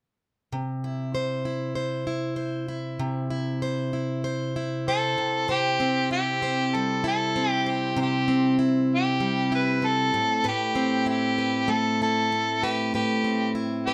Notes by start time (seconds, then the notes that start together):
0.53 C3
0.84 E4
1.15 C5
1.45 E4
1.75 C5
2.07 E4
2.36 C5
2.68 E4
2.99 C3
3.30 E4
3.62 C5
3.93 E4
4.24 C5
4.56 E4
4.88 A4 C5
5.18 C3
5.48 C3 G4 C5
5.80 C4
6.11 E4 G4
6.42 C5
6.75 G3 A4
7.04 E4 A4
7.36 C4
7.51 G4
7.66 G4 C5
7.96 C3 C5
8.02 G4
8.28 C4
8.59 E4
8.95 G4
9.20 G3
9.52 E4 B4
9.82 C4
9.87 A4
10.14 A2
10.44 A2 B4
10.48 G4
10.75 C4
11.06 E4 G4
11.38 B4
11.68 A3 A4
12.02 E4 A4
12.32 C4
12.63 G4 B4
12.94 A2 G4 B4
13.24 C4
13.55 E4
13.86 G4 B4